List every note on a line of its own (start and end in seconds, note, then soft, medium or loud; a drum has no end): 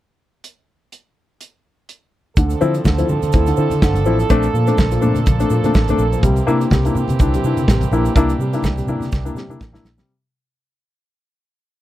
0.44 closed hi-hat medium
0.92 closed hi-hat soft
1.41 closed hi-hat medium
1.89 closed hi-hat soft
2.36 2.54 D2 medium
2.36 2.52 D3 medium
2.36 4.28 F3 medium
2.36 4.28 C4 medium
2.36 6.19 D4 medium
2.36 6.19 A4 medium
2.36 kick loud
2.36 closed hi-hat medium
2.36 muted conga soft
2.36 shaker medium
2.50 closed hi-hat soft
2.50 shaker medium
2.61 2.78 D3 medium
2.61 2.76 F3 medium
2.61 2.74 C4 medium
2.61 2.74 E4 medium
2.61 muted conga soft
2.61 shaker medium
2.74 2.79 C4 soft
2.74 2.79 E4 soft
2.74 closed hi-hat soft
2.74 shaker soft
2.84 3.02 D2 medium
2.84 3.00 D3 medium
2.84 kick medium
2.84 snare medium
2.84 muted conga soft
2.84 high conga medium
2.84 shaker medium
2.98 3.10 F3 medium
2.98 3.08 C4 medium
2.98 3.07 E4 medium
2.98 closed hi-hat soft
2.98 shaker soft
3.09 3.19 D3 medium
3.09 3.15 C4 soft
3.09 3.15 E4 soft
3.09 low conga medium
3.09 shaker soft
3.22 3.30 D3 medium
3.22 closed hi-hat soft
3.22 high conga medium
3.22 shaker soft
3.32 3.50 D2 loud
3.32 3.48 C4 medium
3.32 3.48 E4 medium
3.32 kick loud
3.32 closed hi-hat medium
3.32 muted conga soft
3.32 high conga medium
3.32 shaker medium
3.46 3.59 D3 soft
3.46 closed hi-hat soft
3.46 shaker medium
3.57 3.67 D3 medium
3.57 3.72 C4 medium
3.57 3.72 E4 medium
3.57 shaker medium
3.70 3.84 D3 medium
3.70 closed hi-hat soft
3.70 high conga medium
3.70 shaker medium
3.82 4.06 G1 medium
3.82 3.96 D3 medium
3.82 kick medium
3.82 snare loud
3.82 shaker medium
3.94 closed hi-hat soft
3.94 high conga medium
3.94 low conga medium
3.94 shaker soft
4.04 4.23 A1 medium
4.04 4.20 F3 medium
4.04 4.18 C4 medium
4.04 4.19 E4 medium
4.04 muted conga soft
4.04 shaker medium
4.19 4.24 C4 soft
4.19 4.24 E4 soft
4.19 closed hi-hat soft
4.19 shaker soft
4.30 4.47 A#1 loud
4.30 6.21 F3 medium
4.30 4.45 A3 medium
4.30 10.04 A#3 medium
4.30 4.45 C4 medium
4.30 4.45 D4 loud
4.30 kick loud
4.30 closed hi-hat medium
4.30 shaker medium
4.43 closed hi-hat soft
4.43 shaker medium
4.54 4.70 A#2 medium
4.54 4.69 A#2 soft
4.54 4.69 F3 soft
4.54 muted conga soft
4.54 shaker soft
4.67 4.79 A3 medium
4.67 4.76 C4 medium
4.67 4.76 D4 medium
4.67 closed hi-hat soft
4.67 shaker medium
4.77 4.95 A#1 loud
4.77 4.84 C4 soft
4.77 4.84 D4 soft
4.77 kick medium
4.77 snare medium
4.77 muted conga soft
4.77 high conga medium
4.77 shaker medium
4.91 5.04 A#2 medium
4.91 5.04 F3 medium
4.91 closed hi-hat medium
4.91 shaker soft
5.01 5.12 A#2 loud
5.01 5.17 A3 medium
5.01 5.16 C4 medium
5.01 5.17 D4 medium
5.01 low conga medium
5.01 shaker soft
5.15 5.23 A#2 medium
5.15 closed hi-hat soft
5.15 high conga medium
5.15 shaker soft
5.26 5.43 A#1 medium
5.26 kick loud
5.26 closed hi-hat medium
5.26 muted conga soft
5.26 high conga medium
5.26 shaker medium
5.40 5.52 A3 medium
5.40 5.52 C4 medium
5.40 5.52 D4 medium
5.40 closed hi-hat soft
5.40 shaker medium
5.50 5.60 A#2 medium
5.50 5.65 A#2 soft
5.50 5.66 F3 soft
5.50 shaker medium
5.64 5.71 A#2 medium
5.64 5.76 A3 medium
5.64 5.76 C4 medium
5.64 5.77 D4 medium
5.64 closed hi-hat soft
5.64 high conga medium
5.64 shaker medium
5.74 5.92 A1 medium
5.74 kick loud
5.74 snare loud
5.74 shaker medium
5.88 6.01 A3 medium
5.88 6.01 C4 medium
5.88 6.01 D4 medium
5.88 closed hi-hat soft
5.88 high conga medium
5.88 low conga medium
5.88 shaker medium
5.98 6.15 A#1 medium
5.98 muted conga soft
5.98 shaker medium
6.12 6.25 A#2 soft
6.12 6.24 F3 medium
6.12 closed hi-hat soft
6.12 shaker medium
6.23 6.39 C2 loud
6.23 6.38 C3 medium
6.23 10.04 E3 medium
6.23 6.38 G3 medium
6.23 8.14 C4 medium
6.23 10.04 G4 medium
6.23 kick loud
6.23 closed hi-hat medium
6.23 muted conga soft
6.23 shaker medium
6.36 closed hi-hat soft
6.36 shaker medium
6.47 6.64 C3 loud
6.47 6.61 A#3 medium
6.47 6.60 D4 medium
6.47 6.60 E4 medium
6.47 muted conga soft
6.47 shaker soft
6.61 6.66 D4 soft
6.61 6.65 E4 soft
6.61 closed hi-hat soft
6.61 shaker soft
6.71 6.88 C2 loud
6.71 6.86 C3 medium
6.71 6.86 G3 medium
6.71 kick loud
6.71 snare loud
6.71 muted conga soft
6.71 high conga medium
6.71 shaker medium
6.85 6.97 A#3 medium
6.85 6.95 D4 medium
6.85 6.95 E4 medium
6.85 closed hi-hat soft
6.85 shaker medium
6.95 7.05 C3 loud
6.95 7.01 D4 soft
6.95 7.01 E4 soft
6.95 muted conga soft
6.95 low conga medium
6.95 shaker medium
7.08 7.17 C3 medium
7.08 closed hi-hat soft
7.08 high conga medium
7.08 shaker soft
7.19 7.36 C2 medium
7.19 7.35 D4 medium
7.19 7.35 E4 medium
7.19 kick loud
7.19 closed hi-hat medium
7.19 muted conga soft
7.19 high conga medium
7.19 shaker medium
7.34 7.46 C3 soft
7.34 7.45 G3 soft
7.34 closed hi-hat soft
7.34 shaker medium
7.44 7.53 C3 medium
7.44 7.59 D4 medium
7.44 7.59 E4 medium
7.44 shaker medium
7.57 7.64 C3 medium
7.57 closed hi-hat soft
7.57 high conga medium
7.57 shaker medium
7.68 7.84 A1 medium
7.68 7.83 C3 medium
7.68 7.83 G3 medium
7.68 kick loud
7.68 snare loud
7.68 shaker medium
7.81 closed hi-hat soft
7.81 high conga soft
7.81 low conga medium
7.81 shaker medium
7.91 8.08 A#1 medium
7.91 8.07 A#3 medium
7.91 8.04 D4 medium
7.91 8.04 E4 medium
7.91 muted conga soft
7.91 shaker medium
8.05 8.10 D4 soft
8.05 8.10 E4 soft
8.05 closed hi-hat soft
8.05 shaker medium
8.16 8.32 C2 loud
8.16 8.30 A#3 medium
8.16 10.06 D4 medium
8.16 8.31 D4 medium
8.16 8.31 E4 loud
8.16 kick loud
8.16 closed hi-hat medium
8.16 shaker medium
8.29 closed hi-hat soft
8.29 shaker medium
8.39 8.55 C3 medium
8.39 8.55 G3 medium
8.39 muted conga soft
8.39 shaker soft
8.53 8.65 A#3 medium
8.53 8.63 D4 medium
8.53 8.63 E4 medium
8.53 closed hi-hat soft
8.53 shaker medium
8.62 8.80 C2 loud
8.62 8.70 D4 soft
8.62 8.70 E4 soft
8.62 kick medium
8.62 snare medium
8.62 muted conga soft
8.62 high conga medium
8.62 shaker medium
8.78 8.89 C3 soft
8.78 8.89 G3 medium
8.78 closed hi-hat soft
8.78 shaker soft
8.87 8.96 C3 medium
8.87 9.03 A#3 medium
8.87 9.03 D4 medium
8.87 9.03 E4 medium
8.87 low conga medium
8.87 shaker soft
9.00 9.08 C3 medium
9.00 snare soft
9.00 closed hi-hat soft
9.00 high conga medium
9.00 shaker soft
9.12 9.29 C2 medium
9.12 kick loud
9.12 snare medium
9.12 high conga medium
9.12 shaker medium
9.25 9.37 A#3 medium
9.25 9.37 D4 medium
9.25 9.37 E4 medium
9.25 shaker medium
9.35 9.44 C3 loud
9.35 9.51 C3 medium
9.35 9.51 G3 medium
9.35 snare medium
9.35 shaker medium
9.49 9.56 C3 medium
9.49 9.61 A#3 medium
9.49 9.61 D4 medium
9.49 9.61 E4 medium
9.49 high conga medium
9.49 shaker soft
9.60 9.77 A1 medium
9.60 kick loud
9.60 snare medium
9.60 muted conga soft
9.60 shaker medium
9.72 9.85 A#3 medium
9.72 9.85 D4 medium
9.72 9.85 E4 medium
9.72 snare medium
9.72 high conga soft
9.72 low conga medium
9.72 shaker soft
9.83 10.00 A#1 medium
9.83 snare medium
9.83 muted conga soft
9.83 shaker medium
9.98 10.09 C3 medium
9.98 10.09 G3 medium
9.98 snare medium
9.98 shaker medium